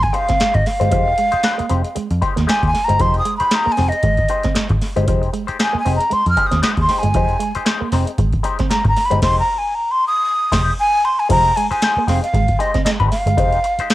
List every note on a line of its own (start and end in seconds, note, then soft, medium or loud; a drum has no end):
0.03 0.17 G#5 medium
0.03 kick medium
0.03 closed hi-hat soft
0.13 0.31 G#3 medium
0.13 0.28 D#4 medium
0.13 0.28 G4 medium
0.13 0.27 C5 medium
0.13 0.56 F5 loud
0.13 muted clean electric guitar stroke soft
0.13 closed hi-hat medium
0.28 0.38 C4 medium
0.28 muted clean electric guitar stroke soft
0.28 kick loud
0.28 snare soft
0.28 closed hi-hat medium
0.40 0.52 G#3 medium
0.40 muted clean electric guitar stroke soft
0.40 muted picked electric bass stroke medium
0.40 snare loud
0.40 closed hi-hat loud
0.54 0.64 G#1 medium
0.54 0.68 D#5 medium
0.54 muted clean electric guitar stroke soft
0.54 kick loud
0.54 closed hi-hat soft
0.66 1.97 F5 loud
0.66 muted clean electric guitar stroke soft
0.66 snare soft
0.66 open hi-hat medium
0.80 0.92 G1 medium
0.80 0.89 G#3 medium
0.80 0.90 G#3 medium
0.80 0.90 D#4 medium
0.80 0.90 G4 medium
0.80 0.91 C5 medium
0.80 closed hi-hat medium
0.90 1.12 F1 loud
0.90 1.04 F3 medium
0.90 1.12 G#3 medium
0.90 1.13 D#4 medium
0.90 1.13 G4 medium
0.90 1.13 C5 medium
0.90 kick loud
0.90 closed hi-hat medium
1.08 muted clean electric guitar stroke soft
1.17 1.30 G#3 medium
1.17 muted clean electric guitar stroke soft
1.17 closed hi-hat medium
1.32 1.42 G#3 soft
1.32 1.43 D#4 medium
1.32 1.43 G4 medium
1.32 1.44 C5 medium
1.32 muted picked electric bass stroke soft
1.32 closed hi-hat soft
1.43 1.65 G#3 medium
1.43 1.58 D#4 medium
1.43 1.58 G4 loud
1.43 1.57 C5 loud
1.43 muted clean electric guitar stroke soft
1.43 snare loud
1.43 closed hi-hat medium
1.58 1.67 A#3 medium
1.58 muted clean electric guitar stroke soft
1.58 muted picked electric bass stroke soft
1.58 closed hi-hat soft
1.70 1.82 F1 medium
1.70 1.87 G#3 medium
1.70 1.81 C4 medium
1.70 1.84 D#4 medium
1.70 1.83 G4 medium
1.70 1.83 C5 medium
1.70 closed hi-hat medium
1.84 muted clean electric guitar stroke soft
1.84 closed hi-hat soft
1.95 2.07 G#3 medium
1.95 muted clean electric guitar stroke medium
1.95 muted picked electric bass stroke soft
1.95 closed hi-hat medium
2.11 2.20 F2 medium
2.11 closed hi-hat soft
2.22 2.39 G#3 medium
2.22 2.36 D#4 medium
2.22 2.35 G4 medium
2.22 2.34 C5 medium
2.22 muted clean electric guitar stroke soft
2.22 kick medium
2.22 closed hi-hat medium
2.35 2.46 D#2 medium
2.35 2.45 A#3 medium
2.35 muted clean electric guitar stroke medium
2.35 snare soft
2.35 closed hi-hat medium
2.47 2.69 G#3 medium
2.47 2.59 G#3 medium
2.47 2.69 D#4 medium
2.47 2.69 G4 medium
2.47 2.70 C5 medium
2.47 2.65 G#5 loud
2.47 muted picked electric bass stroke medium
2.47 snare loud
2.47 closed hi-hat loud
2.63 2.72 D#2 medium
2.63 2.86 G#5 medium
2.63 kick medium
2.63 closed hi-hat soft
2.75 muted clean electric guitar stroke soft
2.75 snare soft
2.75 open hi-hat medium
2.85 2.97 G#3 medium
2.85 2.99 C5 medium
2.85 3.03 A#5 loud
2.89 2.98 G1 medium
2.89 2.98 G#3 medium
2.89 2.99 D#4 soft
2.89 2.99 G4 medium
2.89 closed hi-hat medium
2.99 3.20 F1 medium
2.99 3.12 F3 medium
2.99 3.21 G#3 medium
2.99 3.21 D#4 medium
2.99 3.21 G4 medium
2.99 3.21 C5 medium
2.99 3.18 C6 loud
2.99 kick loud
2.99 closed hi-hat medium
3.14 muted clean electric guitar stroke soft
3.14 closed hi-hat soft
3.19 3.34 D#6 loud
3.25 3.37 G#3 medium
3.25 muted clean electric guitar stroke soft
3.25 closed hi-hat medium
3.38 3.52 G4 medium
3.38 3.53 C5 medium
3.38 3.57 B5 medium
3.38 muted picked electric bass stroke soft
3.38 closed hi-hat soft
3.42 3.52 G#3 soft
3.42 3.52 D#4 medium
3.51 3.74 G#3 medium
3.51 3.67 D#4 medium
3.51 3.66 G4 loud
3.51 3.66 C5 medium
3.51 muted clean electric guitar stroke soft
3.51 snare loud
3.51 closed hi-hat medium
3.55 3.74 A#5 medium
3.66 3.75 A#3 medium
3.66 muted clean electric guitar stroke soft
3.66 muted picked electric bass stroke soft
3.72 3.90 G#5 medium
3.77 3.90 F1 medium
3.77 3.95 G#3 medium
3.77 3.89 C4 medium
3.77 3.93 D#4 medium
3.77 3.92 G4 medium
3.77 3.91 C5 medium
3.77 snare soft
3.77 open hi-hat soft
3.89 4.66 D#5 medium
3.89 muted clean electric guitar stroke medium
3.89 closed hi-hat medium
4.03 4.24 G#1 medium
4.03 4.15 G#3 medium
4.03 muted clean electric guitar stroke soft
4.03 kick loud
4.03 closed hi-hat medium
4.17 kick medium
4.17 closed hi-hat soft
4.29 4.47 G#3 medium
4.29 4.45 D#4 medium
4.29 4.44 G4 medium
4.29 4.44 C5 medium
4.29 muted clean electric guitar stroke medium
4.29 closed hi-hat medium
4.43 4.53 C4 medium
4.43 muted clean electric guitar stroke soft
4.43 kick medium
4.43 snare soft
4.43 closed hi-hat medium
4.55 4.66 G#3 medium
4.55 muted clean electric guitar stroke soft
4.55 muted picked electric bass stroke soft
4.55 snare loud
4.55 closed hi-hat loud
4.69 4.79 G#1 medium
4.69 muted clean electric guitar stroke medium
4.69 kick medium
4.69 closed hi-hat soft
4.82 muted clean electric guitar stroke soft
4.82 snare soft
4.82 open hi-hat medium
4.96 5.08 G1 medium
4.96 5.05 G#3 medium
4.96 5.06 G#3 medium
4.96 5.07 D#4 medium
4.96 5.07 G4 medium
4.96 5.08 C5 medium
4.96 closed hi-hat medium
5.07 5.28 F1 loud
5.07 5.19 F3 medium
5.07 5.28 G#3 medium
5.07 5.29 D#4 medium
5.07 5.29 G4 medium
5.07 5.29 C5 medium
5.07 kick loud
5.07 closed hi-hat medium
5.22 muted clean electric guitar stroke soft
5.22 closed hi-hat soft
5.33 5.45 G#3 medium
5.33 muted clean electric guitar stroke soft
5.33 closed hi-hat medium
5.47 5.58 G#3 soft
5.47 5.58 D#4 soft
5.47 5.59 G4 medium
5.47 5.59 C5 medium
5.47 muted picked electric bass stroke soft
5.47 closed hi-hat soft
5.59 5.80 G#3 medium
5.59 5.74 D#4 medium
5.59 5.74 G4 medium
5.59 5.74 C5 medium
5.59 5.77 G#5 medium
5.59 muted clean electric guitar stroke soft
5.59 snare loud
5.59 closed hi-hat medium
5.73 5.82 A#3 medium
5.73 muted picked electric bass stroke medium
5.73 muted clean electric guitar stroke soft
5.79 5.94 G#5 medium
5.85 5.97 F1 medium
5.85 6.02 G#3 medium
5.85 5.97 C4 loud
5.85 6.00 D#4 medium
5.85 6.00 G4 medium
5.85 5.99 C5 medium
5.85 open hi-hat medium
5.96 6.15 A#5 medium
6.00 muted clean electric guitar stroke medium
6.00 closed hi-hat medium
6.10 6.22 G#3 medium
6.10 6.29 C6 loud
6.10 muted clean electric guitar stroke soft
6.10 muted picked electric bass stroke soft
6.10 closed hi-hat medium
6.26 6.35 F2 medium
6.26 6.48 F6 loud
6.26 closed hi-hat soft
6.36 6.54 G#3 medium
6.36 6.52 D#4 medium
6.36 6.51 G4 medium
6.36 6.51 C5 medium
6.36 muted clean electric guitar stroke soft
6.36 kick medium
6.36 closed hi-hat medium
6.47 6.63 D#6 loud
6.51 6.61 D#2 medium
6.51 6.60 C4 medium
6.51 muted clean electric guitar stroke medium
6.51 snare soft
6.51 closed hi-hat medium
6.62 6.84 G#3 medium
6.62 6.74 G#3 medium
6.62 6.78 D#4 loud
6.62 6.77 G4 medium
6.62 6.76 C5 loud
6.62 6.69 D#6 loud
6.62 muted picked electric bass stroke medium
6.62 snare loud
6.62 closed hi-hat loud
6.77 6.86 D#2 medium
6.77 muted clean electric guitar stroke medium
6.77 kick medium
6.77 closed hi-hat soft
6.82 7.00 C6 medium
6.88 7.06 G#3 medium
6.88 7.05 D#4 medium
6.88 7.04 G4 medium
6.88 7.04 C5 medium
6.88 muted clean electric guitar stroke soft
6.88 snare soft
6.88 open hi-hat medium
6.99 7.76 G#5 medium
7.03 7.15 G1 medium
7.03 7.12 G#3 medium
7.03 muted clean electric guitar stroke soft
7.03 closed hi-hat medium
7.14 7.35 F1 loud
7.14 7.26 F3 medium
7.14 7.36 G#3 medium
7.14 7.36 D#4 medium
7.14 7.37 G4 medium
7.14 7.37 C5 medium
7.14 kick loud
7.14 closed hi-hat medium
7.28 muted clean electric guitar stroke soft
7.28 closed hi-hat soft
7.39 7.51 G#3 medium
7.39 muted clean electric guitar stroke soft
7.39 closed hi-hat medium
7.55 7.64 G#3 medium
7.55 7.65 D#4 medium
7.55 7.66 G4 medium
7.55 7.66 C5 medium
7.55 muted picked electric bass stroke medium
7.55 closed hi-hat medium
7.65 7.87 G#3 loud
7.65 7.81 D#4 loud
7.65 7.81 G4 loud
7.65 7.80 C5 loud
7.65 muted clean electric guitar stroke soft
7.65 snare loud
7.65 closed hi-hat medium
7.81 7.90 A#3 medium
7.81 muted clean electric guitar stroke soft
7.81 muted picked electric bass stroke soft
7.92 8.04 F1 medium
7.92 8.10 G#3 medium
7.92 8.04 C4 loud
7.92 8.08 D#4 medium
7.92 8.08 G4 medium
7.92 8.07 C5 medium
7.92 snare soft
7.92 open hi-hat medium
8.07 muted clean electric guitar stroke medium
8.07 closed hi-hat medium
8.18 8.39 G#1 loud
8.18 8.30 G#3 medium
8.18 muted clean electric guitar stroke soft
8.18 kick loud
8.18 closed hi-hat medium
8.32 kick medium
8.32 closed hi-hat soft
8.43 8.61 G#3 medium
8.43 8.59 D#4 medium
8.43 8.59 G4 medium
8.43 8.58 C5 medium
8.43 muted clean electric guitar stroke soft
8.43 closed hi-hat medium
8.59 8.68 C4 medium
8.59 muted clean electric guitar stroke medium
8.59 kick loud
8.59 snare soft
8.59 closed hi-hat medium
8.70 8.82 G#3 medium
8.70 8.87 A#5 medium
8.70 muted clean electric guitar stroke soft
8.70 muted picked electric bass stroke medium
8.70 snare loud
8.70 closed hi-hat loud
8.84 8.94 G#1 medium
8.84 9.07 A#5 medium
8.84 muted clean electric guitar stroke medium
8.84 kick medium
8.84 closed hi-hat soft
8.97 muted clean electric guitar stroke soft
8.97 snare soft
8.97 open hi-hat medium
9.05 9.22 B5 medium
9.10 9.20 G1 medium
9.10 9.19 G#3 medium
9.10 9.21 G#3 medium
9.10 9.21 D#4 medium
9.10 9.22 G4 medium
9.10 9.22 C5 medium
9.10 closed hi-hat medium
9.22 9.41 F1 loud
9.22 9.40 G#3 loud
9.22 9.41 D#4 loud
9.22 9.41 G4 medium
9.22 9.41 C5 loud
9.22 9.39 C6 loud
9.22 kick loud
9.22 snare loud
9.22 crash medium
9.40 9.60 A#5 medium
9.58 9.76 G#5 medium
9.75 9.93 A#5 medium
9.91 10.07 C6 loud
10.07 10.73 D#6 loud
10.52 10.70 F1 loud
10.52 10.70 G#3 loud
10.52 10.70 D#4 loud
10.52 10.71 G4 loud
10.52 10.71 C5 loud
10.52 kick loud
10.52 snare medium
10.52 crash medium
10.80 11.06 G#5 loud
11.05 11.21 C6 loud
11.20 11.30 G#5 medium
11.29 11.50 F1 loud
11.29 11.41 F3 medium
11.29 11.50 G#3 medium
11.29 11.51 D#4 medium
11.29 11.51 G4 medium
11.29 11.51 C5 medium
11.29 11.58 A#5 loud
11.29 kick loud
11.29 closed hi-hat medium
11.29 crash loud
11.45 muted clean electric guitar stroke soft
11.45 closed hi-hat soft
11.56 11.68 G#3 medium
11.56 11.70 G#5 loud
11.56 muted clean electric guitar stroke soft
11.56 closed hi-hat medium
11.70 11.81 G#3 medium
11.70 11.82 D#4 medium
11.70 11.83 G4 medium
11.70 11.83 C5 medium
11.70 12.10 G#5 medium
11.70 muted picked electric bass stroke medium
11.70 closed hi-hat medium
11.82 12.03 G#3 loud
11.82 11.96 D#4 medium
11.82 11.96 G4 loud
11.82 11.95 C5 loud
11.82 muted clean electric guitar stroke soft
11.82 snare loud
11.82 closed hi-hat medium
11.97 12.06 A#3 medium
11.97 muted clean electric guitar stroke soft
11.97 muted picked electric bass stroke medium
12.07 12.19 F1 medium
12.07 12.24 G#3 medium
12.07 12.20 C4 medium
12.07 12.24 D#4 medium
12.07 12.23 G4 medium
12.07 12.22 C5 medium
12.07 12.22 F5 medium
12.07 snare soft
12.07 open hi-hat medium
12.23 12.62 F5 medium
12.23 muted clean electric guitar stroke medium
12.23 closed hi-hat soft
12.33 12.54 G#1 loud
12.33 12.46 G#3 medium
12.33 muted clean electric guitar stroke medium
12.33 kick loud
12.33 closed hi-hat medium
12.48 kick medium
12.48 closed hi-hat soft
12.59 12.76 G#3 medium
12.59 12.73 D#4 medium
12.59 12.73 G4 medium
12.59 12.72 C5 medium
12.59 12.84 D#5 medium
12.59 muted clean electric guitar stroke soft
12.59 closed hi-hat medium
12.74 12.83 C4 medium
12.74 muted clean electric guitar stroke soft
12.74 kick medium
12.74 snare soft
12.74 closed hi-hat medium
12.85 12.97 G#3 medium
12.85 12.91 D#5 loud
12.85 muted clean electric guitar stroke soft
12.85 muted picked electric bass stroke medium
12.85 snare loud
12.85 closed hi-hat loud
13.00 13.09 G#1 medium
13.00 13.11 G#3 medium
13.00 13.11 D#4 medium
13.00 13.12 G4 medium
13.00 13.12 C5 medium
13.00 kick medium
13.00 closed hi-hat soft
13.11 13.94 F5 medium
13.11 muted clean electric guitar stroke soft
13.11 snare soft
13.11 open hi-hat medium
13.26 13.37 G1 medium
13.26 13.35 G#3 medium
13.26 muted clean electric guitar stroke soft
13.26 closed hi-hat medium
13.37 13.57 F1 loud
13.37 13.58 G#3 medium
13.37 13.58 D#4 medium
13.37 13.59 G4 medium
13.37 13.59 C5 medium
13.37 kick loud
13.37 closed hi-hat medium
13.52 closed hi-hat soft
13.64 muted clean electric guitar stroke medium
13.64 closed hi-hat medium
13.79 13.89 G#3 medium
13.79 13.90 D#4 medium
13.79 13.90 G4 medium
13.79 13.91 C5 medium
13.79 muted picked electric bass stroke medium
13.79 closed hi-hat medium
13.90 13.94 G#3 medium
13.90 13.94 D#4 medium
13.90 snare loud
13.90 closed hi-hat medium